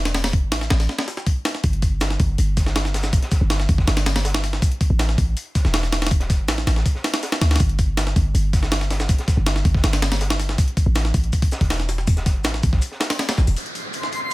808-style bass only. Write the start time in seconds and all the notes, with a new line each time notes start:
Already playing: E1
0.43 A1
0.71 A1
1.64 G1
2.20 G1
2.38 G1
3.41 G1
3.69 G1
3.88 G1
4.90 A1
5.18 A1
5.65 E1
6.39 A1
6.67 A1
7.41 D2
7.60 G1
8.16 G1
8.35 G1
9.37 G1
9.65 G1
9.84 G1
10.86 A1
11.14 A1
11.61 E1
12.36 A1
12.63 A1
13.38 A1
13.48 E1